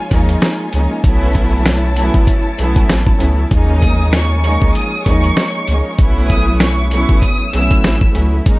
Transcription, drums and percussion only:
0.10 kick loud
0.10 closed hi-hat medium
0.10 shaker medium
0.29 closed hi-hat medium
0.42 snare loud
0.42 closed hi-hat loud
0.42 shaker medium
0.73 closed hi-hat medium
0.73 shaker medium
1.03 kick loud
1.03 closed hi-hat loud
1.03 shaker medium
1.34 kick medium
1.34 closed hi-hat medium
1.34 shaker soft
1.65 snare loud
1.65 closed hi-hat loud
1.65 shaker medium
1.96 closed hi-hat medium
1.96 shaker medium
2.14 kick medium
2.27 kick loud
2.27 closed hi-hat loud
2.27 shaker medium
2.58 closed hi-hat medium
2.58 shaker medium
2.76 kick loud
2.76 closed hi-hat medium
2.89 snare loud
2.89 closed hi-hat loud
2.89 shaker medium
3.06 kick loud
3.20 closed hi-hat medium
3.20 shaker medium
3.51 kick loud
3.51 closed hi-hat loud
3.51 shaker medium
3.82 kick medium
3.82 closed hi-hat medium
3.82 shaker soft
4.12 snare loud
4.12 closed hi-hat loud
4.12 shaker medium
4.44 closed hi-hat medium
4.44 shaker medium
4.62 kick medium
4.75 closed hi-hat loud
4.75 shaker medium
5.05 kick loud
5.05 closed hi-hat medium
5.05 shaker medium
5.24 closed hi-hat medium
5.37 snare loud
5.37 closed hi-hat loud
5.37 shaker medium
5.68 closed hi-hat medium
5.68 shaker medium
5.98 kick loud
5.98 closed hi-hat loud
6.30 kick medium
6.30 closed hi-hat medium
6.60 snare loud
6.60 closed hi-hat loud
6.91 closed hi-hat medium
7.09 kick loud
7.22 kick loud
7.22 closed hi-hat loud
7.53 closed hi-hat medium
7.71 kick medium
7.71 closed hi-hat medium
7.84 snare loud
7.84 closed hi-hat loud
8.01 kick loud
8.15 closed hi-hat medium
8.46 kick loud
8.46 closed hi-hat loud

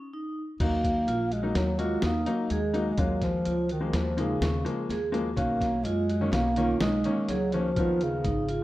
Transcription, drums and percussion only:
0.60 kick medium
0.60 closed hi-hat medium
0.60 crash medium
0.84 kick medium
0.84 closed hi-hat medium
1.08 closed hi-hat medium
1.32 closed hi-hat medium
1.55 snare medium
1.55 closed hi-hat medium
1.79 closed hi-hat medium
2.02 snare medium
2.02 closed hi-hat medium
2.26 closed hi-hat medium
2.50 closed hi-hat medium
2.74 closed hi-hat medium
2.98 kick medium
2.98 closed hi-hat medium
3.22 kick medium
3.22 snare soft
3.22 closed hi-hat medium
3.45 closed hi-hat medium
3.69 closed hi-hat medium
3.93 snare medium
3.93 closed hi-hat medium
4.18 closed hi-hat medium
4.42 snare medium
4.42 closed hi-hat medium
4.66 closed hi-hat medium
4.90 snare soft
4.90 closed hi-hat medium
5.14 closed hi-hat medium
5.37 kick medium
5.37 closed hi-hat medium
5.61 kick medium
5.61 snare soft
5.61 closed hi-hat medium
5.85 closed hi-hat medium
6.09 closed hi-hat medium
6.33 snare medium
6.33 closed hi-hat medium
6.56 closed hi-hat medium
6.81 snare loud
6.81 closed hi-hat medium
7.04 closed hi-hat medium
7.29 snare soft
7.29 closed hi-hat medium
7.52 closed hi-hat soft
7.76 kick medium
7.76 closed hi-hat medium
8.01 closed hi-hat medium
8.24 kick medium
8.24 closed hi-hat medium
8.49 closed hi-hat medium

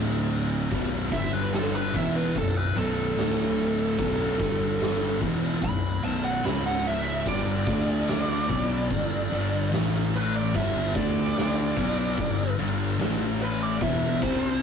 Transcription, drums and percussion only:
0.30 crash medium
0.71 kick loud
0.71 crash medium
1.12 kick loud
1.12 crash medium
1.35 snare soft
1.53 snare loud
1.53 crash medium
1.94 kick loud
1.94 crash medium
2.35 kick loud
2.35 crash medium
2.77 crash medium
3.17 snare loud
3.17 crash medium
3.58 crash medium
3.99 kick loud
3.99 crash medium
4.39 kick loud
4.39 crash medium
4.80 snare loud
4.80 crash medium
5.21 kick medium
5.21 crash medium
5.62 kick medium
5.62 crash medium
6.03 crash medium
6.44 snare loud
6.44 crash medium
6.85 crash medium
7.26 kick loud
7.26 crash medium
7.67 kick loud
7.67 crash medium
8.08 snare loud
8.08 crash medium
8.49 kick loud
8.49 crash medium
8.90 kick medium
8.90 crash medium
9.32 crash medium
9.72 snare loud
9.72 crash medium
10.14 crash medium
10.54 kick loud
10.54 crash medium
10.95 kick loud
10.95 crash medium
11.18 snare soft
11.36 snare loud
11.36 crash medium
11.77 kick loud
11.77 crash loud
12.17 kick loud
12.17 crash medium
12.58 crash medium
12.99 snare loud
12.99 crash medium
13.40 crash medium
13.81 kick loud
13.81 crash medium
14.22 kick loud
14.22 crash medium

